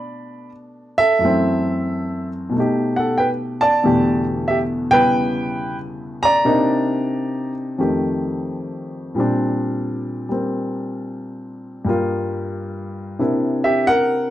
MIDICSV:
0, 0, Header, 1, 2, 480
1, 0, Start_track
1, 0, Tempo, 667408
1, 866, Time_signature, 4, 2, 24, 8
1, 2299, Tempo, 652174
1, 5179, Tempo, 684151
1, 7579, Tempo, 664452
1, 10304, End_track
2, 0, Start_track
2, 0, Title_t, "Grand piano"
2, 0, Program_c, 0, 0
2, 0, Note_on_c, 0, 47, 42
2, 0, Note_on_c, 0, 57, 45
2, 0, Note_on_c, 0, 59, 41
2, 0, Note_on_c, 0, 62, 49
2, 0, Note_on_c, 0, 74, 55
2, 0, Note_on_c, 0, 83, 77
2, 349, Note_off_c, 0, 83, 0
2, 354, Note_off_c, 0, 74, 0
2, 704, Note_on_c, 0, 76, 112
2, 718, Note_on_c, 0, 69, 68
2, 852, Note_off_c, 0, 47, 0
2, 856, Note_on_c, 0, 42, 59
2, 862, Note_off_c, 0, 57, 0
2, 873, Note_on_c, 0, 52, 48
2, 877, Note_off_c, 0, 59, 0
2, 885, Note_on_c, 0, 57, 48
2, 889, Note_off_c, 0, 62, 0
2, 899, Note_on_c, 0, 60, 60
2, 1636, Note_off_c, 0, 76, 0
2, 1643, Note_off_c, 0, 69, 0
2, 1794, Note_on_c, 0, 47, 49
2, 1804, Note_off_c, 0, 57, 0
2, 1814, Note_on_c, 0, 57, 47
2, 1819, Note_off_c, 0, 42, 0
2, 1827, Note_off_c, 0, 52, 0
2, 1840, Note_off_c, 0, 60, 0
2, 1848, Note_on_c, 0, 63, 48
2, 1869, Note_on_c, 0, 67, 58
2, 2132, Note_on_c, 0, 78, 76
2, 2154, Note_on_c, 0, 69, 61
2, 2282, Note_off_c, 0, 78, 0
2, 2284, Note_on_c, 0, 79, 79
2, 2294, Note_off_c, 0, 69, 0
2, 2298, Note_on_c, 0, 71, 67
2, 2358, Note_off_c, 0, 79, 0
2, 2370, Note_off_c, 0, 71, 0
2, 2603, Note_on_c, 0, 81, 95
2, 2612, Note_on_c, 0, 74, 70
2, 2763, Note_off_c, 0, 47, 0
2, 2765, Note_off_c, 0, 57, 0
2, 2768, Note_on_c, 0, 40, 53
2, 2773, Note_off_c, 0, 67, 0
2, 2775, Note_on_c, 0, 47, 51
2, 2776, Note_on_c, 0, 57, 52
2, 2778, Note_on_c, 0, 52, 50
2, 2781, Note_on_c, 0, 50, 49
2, 2784, Note_on_c, 0, 67, 63
2, 2790, Note_off_c, 0, 63, 0
2, 3059, Note_off_c, 0, 81, 0
2, 3064, Note_off_c, 0, 74, 0
2, 3242, Note_on_c, 0, 76, 84
2, 3252, Note_off_c, 0, 67, 0
2, 3263, Note_on_c, 0, 67, 61
2, 3315, Note_off_c, 0, 76, 0
2, 3335, Note_off_c, 0, 67, 0
2, 3558, Note_on_c, 0, 49, 50
2, 3559, Note_on_c, 0, 79, 117
2, 3566, Note_on_c, 0, 55, 41
2, 3573, Note_on_c, 0, 59, 41
2, 3575, Note_on_c, 0, 71, 81
2, 3577, Note_on_c, 0, 64, 39
2, 4180, Note_off_c, 0, 79, 0
2, 4188, Note_off_c, 0, 71, 0
2, 4529, Note_on_c, 0, 82, 116
2, 4547, Note_on_c, 0, 74, 78
2, 4690, Note_off_c, 0, 49, 0
2, 4691, Note_on_c, 0, 58, 57
2, 4692, Note_on_c, 0, 48, 62
2, 4693, Note_off_c, 0, 40, 0
2, 4693, Note_off_c, 0, 55, 0
2, 4697, Note_off_c, 0, 47, 0
2, 4697, Note_off_c, 0, 57, 0
2, 4697, Note_off_c, 0, 59, 0
2, 4698, Note_off_c, 0, 52, 0
2, 4699, Note_off_c, 0, 64, 0
2, 4700, Note_off_c, 0, 50, 0
2, 4700, Note_on_c, 0, 62, 56
2, 4703, Note_on_c, 0, 63, 67
2, 5458, Note_off_c, 0, 82, 0
2, 5467, Note_off_c, 0, 74, 0
2, 5646, Note_off_c, 0, 48, 0
2, 5646, Note_off_c, 0, 58, 0
2, 5650, Note_off_c, 0, 62, 0
2, 5651, Note_off_c, 0, 63, 0
2, 5652, Note_on_c, 0, 41, 47
2, 5657, Note_on_c, 0, 51, 46
2, 5662, Note_on_c, 0, 57, 44
2, 5667, Note_on_c, 0, 67, 53
2, 6608, Note_on_c, 0, 46, 53
2, 6616, Note_on_c, 0, 55, 49
2, 6618, Note_off_c, 0, 41, 0
2, 6621, Note_off_c, 0, 51, 0
2, 6623, Note_off_c, 0, 57, 0
2, 6626, Note_off_c, 0, 67, 0
2, 6630, Note_on_c, 0, 60, 46
2, 6645, Note_on_c, 0, 62, 61
2, 7399, Note_off_c, 0, 55, 0
2, 7409, Note_on_c, 0, 55, 42
2, 7419, Note_off_c, 0, 60, 0
2, 7419, Note_on_c, 0, 58, 39
2, 7429, Note_on_c, 0, 60, 45
2, 8529, Note_on_c, 0, 43, 57
2, 8530, Note_off_c, 0, 55, 0
2, 8537, Note_off_c, 0, 58, 0
2, 8541, Note_on_c, 0, 55, 54
2, 8542, Note_off_c, 0, 46, 0
2, 8548, Note_on_c, 0, 58, 55
2, 8551, Note_off_c, 0, 60, 0
2, 8561, Note_off_c, 0, 62, 0
2, 8562, Note_on_c, 0, 65, 64
2, 9496, Note_off_c, 0, 58, 0
2, 9499, Note_off_c, 0, 43, 0
2, 9502, Note_on_c, 0, 48, 49
2, 9504, Note_off_c, 0, 55, 0
2, 9506, Note_on_c, 0, 62, 46
2, 9507, Note_on_c, 0, 58, 45
2, 9513, Note_on_c, 0, 64, 49
2, 9515, Note_off_c, 0, 65, 0
2, 9826, Note_on_c, 0, 76, 88
2, 9834, Note_on_c, 0, 67, 65
2, 9974, Note_off_c, 0, 76, 0
2, 9978, Note_off_c, 0, 67, 0
2, 9993, Note_on_c, 0, 78, 108
2, 10004, Note_on_c, 0, 70, 83
2, 10283, Note_off_c, 0, 78, 0
2, 10289, Note_off_c, 0, 70, 0
2, 10304, Note_off_c, 0, 48, 0
2, 10304, Note_off_c, 0, 58, 0
2, 10304, Note_off_c, 0, 62, 0
2, 10304, Note_off_c, 0, 64, 0
2, 10304, End_track
0, 0, End_of_file